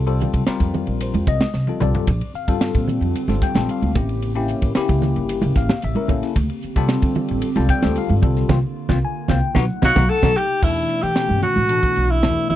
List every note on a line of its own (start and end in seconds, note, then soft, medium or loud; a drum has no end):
0.00 0.23 C2 medium
0.07 0.43 G3 medium
0.07 0.43 C4 medium
0.07 0.43 F4 medium
0.07 0.43 A4 medium
0.07 ride medium
0.20 hi-hat pedal medium
0.20 low conga medium
0.34 0.45 C2 medium
0.34 kick medium
0.34 ride medium
0.47 1.44 G3 medium
0.47 1.44 C4 medium
0.47 1.44 F4 medium
0.47 1.44 A#4 medium
0.47 muted upright bass stroke soft
0.47 snare loud
0.47 hi-hat pedal medium
0.47 ride medium
0.60 0.83 F2 medium
0.60 kick medium
0.60 ride medium
0.73 hi-hat pedal medium
0.73 low conga medium
0.87 1.10 A#1 medium
0.87 ride medium
1.01 1.27 C5 medium
1.01 hi-hat pedal loud
1.01 ride medium
1.14 1.25 E2 medium
1.14 ride medium
1.14 high conga medium
1.27 1.39 C2 medium
1.27 1.78 D#5 loud
1.27 kick medium
1.27 hi-hat pedal medium
1.27 low conga medium
1.41 snare loud
1.41 ride medium
1.41 high conga medium
1.54 1.65 C2 medium
1.54 snare medium
1.54 hi-hat pedal medium
1.67 1.80 G3 medium
1.67 1.80 C4 medium
1.67 1.80 F4 medium
1.67 1.80 A4 medium
1.67 high tom medium
1.80 1.92 C2 medium
1.80 2.08 G3 medium
1.80 2.08 C4 medium
1.80 2.08 F4 medium
1.80 2.08 A4 medium
1.80 2.31 D5 medium
1.80 hi-hat pedal medium
1.80 mid tom medium
1.80 low conga medium
1.95 floor tom medium
2.07 2.19 A#1 loud
2.07 3.94 D3 medium
2.07 3.94 C4 medium
2.07 6.32 G4 medium
2.07 kick medium
2.07 hi-hat pedal medium
2.07 ride medium
2.21 ride medium
2.34 2.85 F5 medium
2.34 muted upright bass stroke soft
2.34 hi-hat pedal medium
2.48 2.71 G2 medium
2.48 3.20 G3 medium
2.48 3.20 C4 medium
2.48 3.21 F4 medium
2.48 3.21 A4 medium
2.48 kick medium
2.48 ride medium
2.61 snare loud
2.61 hi-hat pedal medium
2.61 ride medium
2.75 2.97 A#2 medium
2.75 kick medium
2.75 ride medium
2.88 hi-hat pedal medium
2.88 low conga medium
3.01 3.12 F2 medium
3.01 ride medium
3.15 hi-hat pedal medium
3.15 ride medium
3.28 3.39 G1 medium
3.28 3.53 G3 medium
3.28 3.53 C4 medium
3.28 3.53 F4 medium
3.28 3.53 A4 medium
3.28 snare soft
3.28 ride medium
3.28 high conga medium
3.42 3.68 G5 medium
3.42 kick medium
3.42 snare soft
3.42 hi-hat pedal medium
3.55 3.66 A#1 medium
3.55 3.91 G3 medium
3.55 3.91 C4 medium
3.55 3.92 F4 medium
3.55 3.92 A4 medium
3.55 snare loud
3.55 ride medium
3.55 high conga medium
3.69 3.96 F5 medium
3.69 hi-hat pedal medium
3.69 ride medium
3.82 3.93 D2 medium
3.82 ride medium
3.82 high conga medium
3.95 4.52 A1 medium
3.95 6.34 C#3 medium
3.95 4.32 A#3 medium
3.95 6.35 A#3 medium
3.95 4.32 C#4 medium
3.95 4.32 E4 medium
3.95 4.32 G4 medium
3.95 kick loud
3.95 hi-hat pedal medium
3.95 low conga medium
4.09 ride medium
4.22 hi-hat pedal medium
4.22 ride medium
4.35 4.72 A#3 medium
4.35 4.72 C#4 medium
4.35 4.72 E4 medium
4.35 4.72 G4 medium
4.35 ride medium
4.48 hi-hat pedal medium
4.62 4.73 A1 medium
4.62 kick medium
4.62 ride medium
4.75 5.72 A#3 medium
4.75 5.72 C#4 medium
4.75 5.72 E4 medium
4.75 5.73 G4 loud
4.75 muted upright bass stroke soft
4.75 snare loud
4.75 hi-hat pedal medium
4.75 ride medium
4.89 5.12 C#2 loud
4.89 kick medium
4.89 ride medium
5.02 snare soft
5.02 hi-hat pedal medium
5.02 low conga medium
5.16 5.39 G1 medium
5.16 ride medium
5.29 hi-hat pedal medium
5.29 ride medium
5.42 5.54 C#2 medium
5.42 ride medium
5.42 high conga medium
5.55 5.67 A1 medium
5.55 5.82 F5 medium
5.55 kick medium
5.55 snare soft
5.55 hi-hat pedal medium
5.69 snare loud
5.69 ride medium
5.69 high conga medium
5.82 5.94 A1 medium
5.82 6.09 E5 medium
5.82 hi-hat pedal medium
5.82 ride medium
5.95 6.07 A#3 medium
5.95 6.07 C#4 medium
5.95 6.08 E4 medium
5.95 6.08 A#4 medium
5.95 ride medium
5.95 high conga medium
6.08 6.20 A1 medium
6.08 6.35 A#3 medium
6.08 6.36 C#4 medium
6.08 6.36 E4 medium
6.08 6.36 A4 medium
6.08 kick medium
6.08 hi-hat pedal medium
6.08 low conga medium
6.23 snare soft
6.23 ride medium
6.35 6.47 D2 loud
6.35 9.53 D3 medium
6.35 8.21 C4 medium
6.35 8.21 G4 loud
6.35 kick medium
6.35 hi-hat pedal medium
6.35 ride medium
6.50 ride medium
6.62 muted upright bass stroke soft
6.62 hi-hat pedal medium
6.76 6.99 C3 medium
6.76 7.48 G3 medium
6.76 7.49 C4 medium
6.76 7.49 F4 medium
6.76 7.49 A4 loud
6.76 kick medium
6.76 ride medium
6.89 snare loud
6.89 hi-hat pedal medium
6.89 ride medium
7.02 7.25 D3 medium
7.02 kick medium
7.02 ride medium
7.15 hi-hat pedal medium
7.15 low conga medium
7.28 7.41 A1 medium
7.28 ride medium
7.42 hi-hat pedal medium
7.42 ride medium
7.56 7.68 C2 medium
7.56 7.80 G3 medium
7.56 7.80 C4 medium
7.56 7.81 F4 medium
7.56 7.81 A4 medium
7.56 snare soft
7.56 ride medium
7.56 high conga medium
7.69 7.96 G5 loud
7.69 kick medium
7.69 snare soft
7.69 hi-hat pedal medium
7.82 7.95 D2 medium
7.82 8.19 G3 medium
7.82 8.19 C4 medium
7.82 8.19 F4 medium
7.82 8.19 A4 medium
7.82 snare loud
7.82 ride medium
7.82 high conga medium
7.96 8.13 F5 loud
7.96 hi-hat pedal medium
7.96 ride medium
8.09 8.21 G2 medium
8.09 ride medium
8.09 high conga medium
8.22 8.45 C2 medium
8.22 8.49 G3 medium
8.22 9.55 A#3 medium
8.22 8.48 C4 medium
8.22 9.55 F4 medium
8.22 8.48 F4 medium
8.22 8.50 A4 medium
8.22 kick loud
8.22 hi-hat pedal medium
8.22 low conga medium
8.37 snare soft
8.37 ride medium
8.49 8.60 C2 medium
8.49 8.58 A#3 medium
8.49 8.58 C4 medium
8.49 8.58 F4 medium
8.49 kick medium
8.49 snare medium
8.49 low conga loud
8.89 9.00 C2 medium
8.89 8.98 A#3 medium
8.89 8.98 C4 medium
8.89 8.98 F4 medium
8.89 kick medium
8.89 snare medium
8.89 low conga medium
9.05 9.30 G#5 medium
9.28 9.40 C2 loud
9.28 9.38 A#3 medium
9.28 9.38 C4 medium
9.28 9.38 F4 medium
9.28 9.56 G5 medium
9.28 kick medium
9.28 snare medium
9.28 low conga medium
9.55 9.66 B1 loud
9.55 10.61 C3 medium
9.55 10.61 A3 medium
9.55 9.64 B3 loud
9.55 9.64 D#4 medium
9.55 10.61 D#4 medium
9.55 9.64 F#4 loud
9.55 kick loud
9.55 snare loud
9.55 low conga medium
9.59 9.84 F#5 medium
9.82 9.93 B1 medium
9.82 9.91 B3 loud
9.82 9.91 D#4 medium
9.82 9.91 F#4 medium
9.82 10.11 F#4 loud
9.82 10.10 F5 loud
9.82 kick medium
9.82 snare loud
9.82 low conga medium
9.96 10.06 B1 loud
9.96 10.05 B3 medium
9.96 10.04 D#4 medium
9.96 10.04 F#4 medium
9.96 kick loud
9.96 snare medium
9.96 low conga medium
10.10 10.39 A4 loud
10.10 10.27 F#5 medium
10.23 10.33 B1 loud
10.23 10.32 B3 loud
10.23 10.32 D#4 medium
10.23 10.32 F#4 medium
10.23 kick medium
10.23 snare medium
10.23 low conga loud
10.37 10.65 G4 medium
10.62 10.85 E2 medium
10.62 11.11 B2 medium
10.62 11.11 E3 medium
10.62 11.12 A3 medium
10.62 11.12 D4 medium
10.62 11.04 E4 medium
10.62 kick loud
10.62 crash medium
10.89 hi-hat pedal medium
10.89 ride medium
11.02 11.14 E3 medium
11.02 11.42 G4 medium
11.02 ride medium
11.16 11.64 B2 medium
11.16 11.65 E3 medium
11.16 11.65 A3 medium
11.16 11.65 C#4 medium
11.16 snare loud
11.16 hi-hat pedal medium
11.16 ride medium
11.29 11.41 G2 medium
11.29 high conga medium
11.42 12.12 F#4 medium
11.42 muted upright bass stroke soft
11.42 hi-hat pedal medium
11.42 ride medium
11.42 low conga medium
11.56 11.79 A2 medium
11.56 snare soft
11.56 high conga medium
11.69 12.18 B2 medium
11.69 12.18 E3 medium
11.69 12.18 A3 medium
11.69 12.18 D4 medium
11.69 hi-hat pedal medium
11.69 ride medium
11.83 kick medium
11.96 12.25 B1 medium
11.96 hi-hat pedal medium
11.96 ride medium
12.10 12.49 E4 medium
12.23 12.35 E2 medium
12.23 12.56 B2 medium
12.23 12.56 E3 medium
12.23 12.56 A3 medium
12.23 12.56 D4 medium
12.23 snare loud
12.23 hi-hat pedal medium
12.23 ride medium
12.23 high conga medium
12.50 12.56 E2 medium
12.50 12.56 E4 medium
12.50 hi-hat pedal medium
12.50 ride soft
12.50 low conga medium